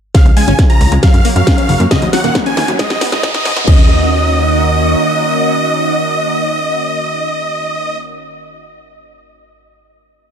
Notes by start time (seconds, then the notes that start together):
0.15 C#3 C#4 F4 G#4 F5, kick, snare, closed hi-hat, riser
0.26 C#2 G#3, closed hi-hat
0.37 G#3 G#5, open hi-hat
0.48 G#1 C#4, closed hi-hat
0.59 C#4, kick, snare, closed hi-hat
0.70 F4 A#5, closed hi-hat
0.81 C#2, open hi-hat
0.92 C#2 G#3, closed hi-hat
1.03 F#3 F#4 A#4 C#5 F5, kick, snare, closed hi-hat
1.14 F#2, closed hi-hat
1.25 A#3, open hi-hat
1.36 F#2 F5, closed hi-hat
1.47 C#4, kick, snare, closed hi-hat
1.58 C#4, closed hi-hat
1.69 F#1 C#3, open hi-hat
1.80 F#2 A#3, closed hi-hat
1.91 C#3 D#3 A#3 C#4 D#5, kick, snare, closed hi-hat
2.02 D#2 F#3, closed hi-hat
2.13 F#3 F#5, snare, open hi-hat
2.24 D#1 A#3, closed hi-hat
2.35 A#3, kick, snare, closed hi-hat
2.46 C#4 G#5, closed hi-hat
2.57 D#2, snare, open hi-hat
2.68 D#2 F#3, closed hi-hat
2.79 G#3 B3 D#4 D#5, kick, snare, closed hi-hat
2.90 G#1, snare, closed hi-hat
3.01 B3, snare, open hi-hat
3.12 G#1 D#5, snare, closed hi-hat
3.23 D#4, kick, snare, closed hi-hat
3.34 D#4, snare, closed hi-hat
3.45 G#2 D#3, snare, open hi-hat
3.56 G#1 B3, snare, closed hi-hat
3.68 D#2 C#3 D#3 A#3 C#4 F#4 D#5, kick, crash